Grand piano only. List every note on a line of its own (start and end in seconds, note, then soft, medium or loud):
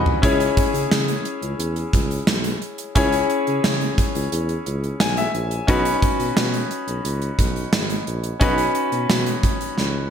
0.00 0.20 C#4 medium
0.00 0.23 D#4 medium
0.00 0.23 F#4 medium
0.00 0.23 B4 medium
0.00 0.19 D#5 medium
0.00 0.24 F#5 medium
0.00 0.25 G#5 medium
0.00 0.25 B5 medium
0.22 2.91 C#4 medium
0.22 2.92 E4 medium
0.22 2.92 G#4 medium
0.22 2.92 C#5 medium
2.95 5.64 C#4 medium
2.95 5.65 E4 medium
2.95 5.65 G#4 medium
2.95 5.65 C#5 medium
5.00 5.16 G#5 medium
5.18 5.65 E5 medium
5.67 8.37 C#4 medium
5.67 8.37 D#4 medium
5.67 8.37 F#4 medium
5.67 8.38 B4 medium
8.40 10.10 C#4 medium
8.40 10.10 D#4 medium
8.40 10.10 F#4 medium
8.40 10.10 B4 medium